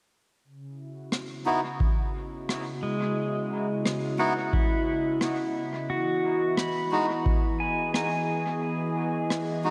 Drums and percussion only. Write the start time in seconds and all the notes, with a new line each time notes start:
1.12 cross-stick
1.80 kick
2.49 cross-stick
3.86 cross-stick
4.53 kick
5.21 cross-stick
6.57 cross-stick
7.26 kick
7.94 cross-stick
9.30 cross-stick